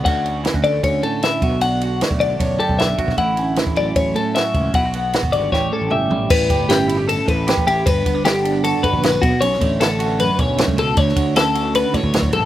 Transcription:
<<
  \new Staff \with { instrumentName = "Clean electric guitar" } { \time 4/4 \key d \major \tempo 4 = 154 fis''4 r8 d''8 cis''8 a'8 e''4 | fis''4 r8 d''8 cis''8 a'8 e''4 | fis''4 r8 d''8 cis''8 a'8 e''4 | fis''4 r8 d''8 cis''8 a'8 e''4 |
b'4 g'4 a'8 b'4 g'8 | b'4 g'4 a'8 b'4 fis'8 | cis''4 a'4 b'8 cis''4 a'8 | cis''4 a'4 b'8 cis''4 a'8 | }
  \new Staff \with { instrumentName = "Clean electric guitar" } { \time 4/4 \key d \major << { <d a cis' fis'>8 cis'8 e'16 fis'16 a4 cis'8 e'8 fis'8 | d'8 fis'8 a4 d'8 g'8 d'8 fis'8 | e'8 cis'8 e'8 a4 cis'8 fis'8 cis'8 | e'16 fis'16 b8 fis'8 g8 g'8 cis'8 g'8 g8~ |
g8 g'8 e'8 e'16 g'16 a'4 g'8 e'8 | r8 b16 d'16 b8 d'8 fis'4 b16 d'16 r8 | cis'8 a8 b16 cis'16 fis'4 cis'8 a8 r8 | r8 fis'8 cis'8 fis'8 a'2 | } \\ { d,4. d4 a,4 b,8~ | b,4 d4 fis,4. b,8 | a,4. fis4 a,4. | b,4. d8 a,4. e8 |
a,4 cis'4. a,4. | g,4 d4. d4 b,8~ | b,8 d4. fis,4. b,8 | d,4 d4. a,8 fis,8 g,8 | } >> }
  \new Staff \with { instrumentName = "Fingered electric bass" } { \clef bass \time 4/4 \key d \major d,4~ d,16 d,8. d,8 r4 b,,8~ | b,,4~ b,,16 b,,8. b,,8 r16 b,,8. b,,16 b,,16 | a,,4~ a,,16 a,,8. a,,8 r4 cis,8 | b,,4~ b,,16 gis,,8. a,,8 r16 a,,16 g,,8 a,,8 |
a,,8 g,,2 a,,8. a,,8. | g,,8 g,,2 g,,16 bes,,8. b,,16 r16 | b,,8 a,,2 b,,8. cis,8. | d,8 d,2 d,16 d,8. bes,,16 r16 | }
  \new DrumStaff \with { instrumentName = "Drums" } \drummode { \time 4/4 <cymc bd cymr>8 cymr8 <cymr sn>16 bd16 cymr8 <bd cymr>8 cymr8 <cymr sn>8 <bd cymr>8 | cymr8 cymr8 <cymr sn>16 bd16 cymr8 <bd cymr>8 cymr16 bd16 <cymr sn>8 <bd cymr>16 <bd sn>16 | <bd cymr>8 cymr8 <cymr sn>16 bd16 cymr8 <bd cymr>8 cymr8 <cymr sn>8 <bd cymr>8 | <bd cymr>8 cymr8 <cymr sn>16 bd16 cymr8 <bd sn>4 toml8 tomfh8 |
<cymc bd>8 <bd cymr>8 <cymr sn>8 cymr8 cymr8 <bd cymr>8 <cymr sn>16 bd16 cymr8 | <bd cymr>8 <bd cymr>8 <cymr sn>16 sn16 cymr8 cymr8 <bd cymr>16 bd16 <cymr sn>8 <bd cymr>8 | cymr16 sn16 <bd cymr>8 <cymr sn>8 cymr8 cymr8 <bd cymr>8 <cymr sn>16 bd16 cymr8 | <bd cymr>16 sn16 <bd cymr>8 <cymr sn>8 cymr8 cymr8 <bd cymr>16 bd16 <cymr sn>16 bd16 cymr8 | }
>>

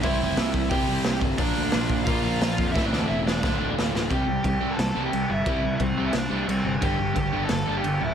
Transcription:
<<
  \new Staff \with { instrumentName = "Lead electric guitar" } { \time 4/4 \key c \mixolydian \tempo 4 = 177 <e' e''>2 <g' g''>4. r8 | <d' d''>2 <f' f''>8 <f' f''>4. | \tuplet 3/2 { <e' e''>8 <d' d''>8 <d' d''>8 } <e' e''>16 r16 <d' d''>4. r4 | <g' g''>4 <g' g''>8. <a' a''>4 <g' g''>8. <e' e''>8~ |
<e' e''>4 <c' c''>8. <e' e''>16 <d' d''>4 <c' c''>8. r16 | <g' g''>4 <g' g''>8. <a' a''>4 <g' g''>8. <e' e''>8 | }
  \new Staff \with { instrumentName = "Overdriven electric guitar" } { \clef bass \time 4/4 \key c \mixolydian <c g c' e' g' c''>2 <c g c' e' g' c''>2 | <bes, f bes d' f' bes'>2 <bes, f bes d' f' bes'>2 | <a, e a c' e' a'>2 <d, a, d a f'>2 | <c g c'>8 <c g>8 <c g>8 <c g c'>8 <c g>8 <c g c'>8 <c g>8 <c g>8 |
<c g c'>8 <c g>8 <c g>8 <c g c'>8 <c g>8 <c g c'>8 <c g>8 <c g>8 | <g, d g>8 <g, d>8 <g, d>8 <g, d g>8 <g, d>8 <g, d g>8 <g, d>8 <g, d>8 | }
  \new Staff \with { instrumentName = "Picked electric bass" } { \clef bass \time 4/4 \key c \mixolydian c,8 f,,8 c,4 c,8 c,8 c,8 g,,8 | bes,,8 d,8 bes,,4 bes,,8 bes,,8 bes,,8 f,8 | a,,8 d,8 e,,4 d,,8 d,,8 d,,8 d,,8 | c,8 c,8 c,8 c,8 c,8 c,8 c,8 g,,8 |
c,8 c,8 c,8 c,8 c,8 c,8 c,8 g,,8 | g,,8 g,,8 g,,8 g,,8 g,,8 g,,8 g,,8 d,,8 | }
  \new DrumStaff \with { instrumentName = "Drums" } \drummode { \time 4/4 <hho bd>4 <hho sn>8 bd8 <hho bd>4 <hho sn>8 bd8 | <hho bd>4 <hho sn>8 bd8 <hho bd>4 <hho sn>8 bd8 | <bd sn>8 sn8 r8 sn8 <bd sn>4 sn8 sn8 | <cymc bd>4 <cymc bd>4 <cymc sn>4 cymc4 |
<cymc bd>4 <cymc bd>4 <cymc sn>4 cymc4 | <cymc bd>4 <cymc bd>4 <cymc sn>4 cymc4 | }
>>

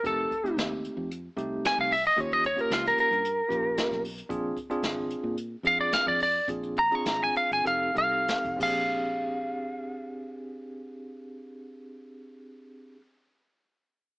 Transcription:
<<
  \new Staff \with { instrumentName = "Lead electric guitar" } { \time 4/4 \key bes \mixolydian \tempo 4 = 106 a'4 r2 aes''16 f''16 e''16 ees''16 | des''16 ees''16 des''16 bes'16 f'16 bes'16 bes'2 r8 | r2 r8 f''16 d''16 f''16 d''16 d''8 | r8 bes''16 des'''16 bes''16 aes''16 f''16 aes''16 f''8 f''4 f''8~ |
f''1~ | f''1 | }
  \new Staff \with { instrumentName = "Tine electric piano" } { \time 4/4 \key bes \mixolydian <a c' ees' g'>8 r16 <a c' ees' g'>4~ <a c' ees' g'>16 r8 <a c' ees' g'>4 r8 | <bes des' f' g'>8 r16 <bes des' f' g'>4~ <bes des' f' g'>16 r8 <bes des' f' g'>4 r8 | <c' d' f' aes'>8 r16 <c' d' f' aes'>4~ <c' d' f' aes'>16 r8 <c' d' f' aes'>4 r8 | <c' d' f' aes'>8 r16 <c' d' f' aes'>4~ <c' d' f' aes'>16 <c' ees' g' a'>8 <c' ees' g' a'>4 <c' d' g' aes'>8~ |
<c' d' g' aes'>1~ | <c' d' g' aes'>1 | }
  \new Staff \with { instrumentName = "Fingered electric bass" } { \clef bass \time 4/4 \key bes \mixolydian f,,8 r8 ees,8. f,8. c,8. c,8. | ees,4 des,8 r16 g,8. bes,,8. ces,8. | bes,,8 r8 aes,,8. bes,8. f,8. f,8. | bes,,4 aes,,8 r16 g,,16 f,,8 c,8. f,,16 bes,,8~ |
bes,,1~ | bes,,1 | }
  \new DrumStaff \with { instrumentName = "Drums" } \drummode { \time 4/4 <hh bd>8 <hh bd>16 hh16 <hh sn>8 hh8 hh8 hh8 <hh sn>16 bd16 hho8 | <hh bd>16 hh16 <hh bd>16 hh16 <hh sn>16 sn16 hh16 hh16 hh8 hh8 <hh sn>16 <hh bd sn>16 hho16 hh16 | <hh bd>8 <hh bd>16 hh16 <hh sn>8 hh8 hh8 hh8 <hh sn>16 bd16 hho8 | <hh bd>16 hh16 <hh bd>16 hh16 <hh sn>8 hh16 hh16 hh8 hh8 <hh sn>16 <hh bd>16 <cymc bd>8 |
r4 r4 r4 r4 | r4 r4 r4 r4 | }
>>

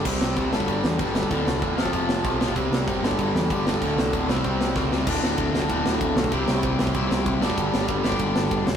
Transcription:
<<
  \new Staff \with { instrumentName = "Overdriven electric guitar" } { \clef bass \time 4/4 \key c \lydian \tempo 4 = 192 <c g c'>4 <c g c'>8 <g, d g>8 <g, d g>4 <g, d g>8 <g, d g>8 | <d, a, d>4 <d, a, d>8 <f, c f>8 <f, c f>4 <f, c f>8 <f, c f>8 | <c g c'>4 <c g c'>8 <g, d g>8 <g, d g>4 <g, d g>8 <g, d g>8 | <d, a, d>4 <d, a, d>8 <c g c'>8 <c g c'>4 <c g c'>8 <c g c'>8 |
<d, a, d a fis'>2 <d, a, d a fis'>2 | <c g c' e' g' c''>2 <c g c' e' g' c''>4. <g, d g b d' g'>8~ | <g, d g b d' g'>4. <g, d g b d' g'>2 r8 | }
  \new Staff \with { instrumentName = "Overdriven electric guitar" } { \clef bass \time 4/4 \key c \lydian <c g c'>4 <c g c'>8 <g, d g>8 <g, d g>4 <g, d g>8 <g, d g>8 | <d, a, d>4 <d, a, d>8 <f, c f>8 <f, c f>4 <f, c f>8 <f, c f>8 | <c g c'>4 <c g c'>8 <g, d g>8 <g, d g>4 <g, d g>8 <g, d g>8 | <d, a, d>4 <d, a, d>8 <c g c'>8 <c g c'>4 <c g c'>8 <c g c'>8 |
<d, a, d>4. <d, a, d>2~ <d, a, d>8 | <c g c'>4. <c g c'>2 <g, d g>8~ | <g, d g>4 <g, d g>2~ <g, d g>8 r8 | }
  \new Staff \with { instrumentName = "Picked electric bass" } { \clef bass \time 4/4 \key c \lydian c,8 c,8 c,8 g,,8 g,,8 e,8 g,,4 | d,,8 c,8 e,,8 f,,8 f,,4 b,,4 | c,8 c,8 fis,,8 g,,8 g,,8 e,8 g,,4 | d,,8 c,8 d,,8 c,8 c,4 cis,4 |
d,,8 d,,8 d,,8 d,,8 d,,8 d,,8 d,,8 b,,8 | c,8 c,8 c,8 c,8 c,8 c,8 c,8 g,,8 | g,,8 g,,8 g,,8 g,,8 g,,8 g,,8 g,,8 e,,8 | }
  \new DrumStaff \with { instrumentName = "Drums" } \drummode { \time 4/4 <cymc bd>8 sn8 <cymc bd>8 sn16 bd16 <cymc bd>8 sn8 <cymc bd>8 sn16 bd16 | <cymc bd>8 sn8 <cymc bd>8 sn16 bd16 <cymc bd>8 sn8 <cymc bd>8 sn16 bd16 | <cymc bd>8 sn8 <cymc bd>8 sn16 bd16 <cymc bd>8 sn8 <cymc bd>8 sn16 bd16 | <cymc bd>8 sn8 <cymc bd>8 sn16 bd16 <cymc bd>8 sn8 <bd sn>8 sn8 |
<cymc bd>8 sn8 <bd cymr>8 sn16 bd16 <bd cymr>8 sn8 <bd cymr>8 sn16 bd16 | <bd cymr>8 sn8 <bd cymr>8 sn16 bd16 <bd cymr>8 sn8 <bd cymr>8 sn16 bd16 | <bd cymr>8 sn8 <bd cymr>8 sn16 bd16 <bd cymr>8 sn8 <bd cymr>8 sn8 | }
>>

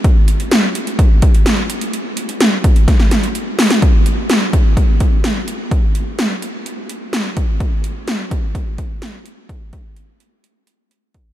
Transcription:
\new DrumStaff \with { instrumentName = "Drums" } \drummode { \time 4/4 \tempo 4 = 127 <hh bd>8 hh16 hh16 <hh sn>8 hh16 hh16 <hh bd>8 <hh bd>16 hh16 <hh sn>8 hh16 hh16 | hh8 hh16 hh16 <hh sn>8 <hh bd>16 hh16 <hh bd sn>16 sn16 <hh sn>16 hh16 hh8 <hho sn>16 <hh sn>16 | <hh bd>8 hh8 <hh sn>8 <hh bd>8 <hh bd>8 <hh bd>8 <hh sn>8 hh8 | <hh bd>8 hh8 <hh sn>8 hh8 hh8 hh8 <hh sn>8 <hh bd>8 |
<hh bd>8 hh8 <hh sn>8 <hh bd>8 <hh bd>8 <hh bd>8 <hh sn>8 hh8 | <hh bd>8 <hh bd>8 hh8 hh8 hh8 hh8 hh8 <hh bd>8 | }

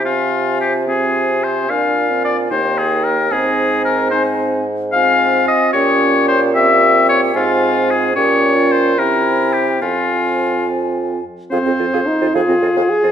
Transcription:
<<
  \new Staff \with { instrumentName = "Flute" } { \time 6/8 \key aes \lydian \tempo 4. = 74 aes''4. aes''4. | aes''4. g''4. | aes''4. aes''4 r8 | \key f \minor aes''4. g''4. |
g''4. aes''4. | g''4. g''4. | aes''2~ aes''8 r8 | f''16 aes'16 c''16 f''16 r16 c''16 f''16 aes'16 c''16 f''16 r16 c''16 | }
  \new Staff \with { instrumentName = "Oboe" } { \time 6/8 \key aes \lydian f'4 g'8 aes'4 c''8 | f''4 d''8 c''8 aes'8 bes'8 | aes'4 bes'8 c''8 r4 | \key f \minor f''4 ees''8 des''4 c''8 |
e''4 des''8 f'4 aes'8 | des''4 c''8 bes'4 g'8 | f'4. r4. | c''4. aes'4. | }
  \new Staff \with { instrumentName = "Clarinet" } { \time 6/8 \key aes \lydian f'4. f'4. | f'4. ees'4. | ees'4. ees'4 r8 | \key f \minor f'4. g'4. |
g'4. f'4. | g'8. f'8. e'4. | f'2~ f'8 r8 | aes'16 c'16 f'16 aes'16 r16 f'16 aes'16 c'16 f'16 aes'16 r16 f'16 | }
  \new Staff \with { instrumentName = "French horn" } { \time 6/8 \key aes \lydian c'4. c'4. | d'8. c'8. bes4. | c'4. c'4 r8 | \key f \minor c'4. des'4. |
c'4. c'4. | des'4. c'4. | c'2~ c'8 r8 | c'4 ees'8 f'4 aes'8 | }
  \new Staff \with { instrumentName = "Bassoon" } { \clef bass \time 6/8 \key aes \lydian c2. | bes,4. ees,4. | aes,2.~ | \key f \minor aes,4 r8 bes,4.~ |
bes,4. aes,4. | bes,4. c4. | f,2~ f,8 r8 | f,16 f,16 f,16 f,16 r16 f,16 f,16 f,16 f,16 f,16 r16 f,16 | }
>>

